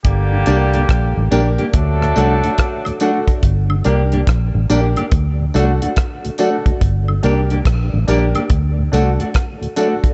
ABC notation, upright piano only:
X:1
M:4/4
L:1/16
Q:"Swing 16ths" 1/4=71
K:Gm
V:1 name="Upright piano"
z2 [DGB] z2 [GB] [DGB] z3 [D^FA] z2 [FA] [DFA] z | z2 [DGB] z3 [DGB] [GB] z2 [D^FA] [FA] z [FA] [DFA] z | z2 [DGB] z3 [DGB] [GB] z2 [D^FA] [FA] z [FA] [DFA] z |]